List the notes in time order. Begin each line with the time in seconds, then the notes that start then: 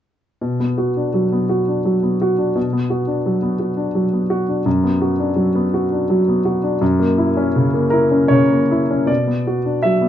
0.41 B2
0.60 B3
0.78 F#4
0.97 D4
1.14 F#3
1.32 B3
1.49 F#4
1.68 D4
1.85 F#3
2.03 B3
2.22 F#4
2.38 D4
2.56 B2
2.73 B3
2.90 F#4
3.07 D4
3.26 F#3
3.42 B3
3.59 F#4
3.77 D4
3.95 F#3
4.13 B3
4.30 F#4
4.48 D4
4.66 F#2
4.84 B3
5.02 F#4
5.19 D4
5.36 F#3
5.55 B3
5.74 F#4
5.92 D4
6.10 F#3
6.28 B3
6.45 F#4
6.63 D4
6.81 F#2
7.00 A#3
7.18 E4
7.37 C#4
7.56 C#3
7.74 A#3
7.90 E4 A#4
8.11 C#4
8.28 C#3 C#5
8.50 A#3
8.71 E4
8.91 C#4
9.06 B2 D5
9.27 B3
9.47 F#4
9.66 D4
9.83 F#3 E5
10.01 B3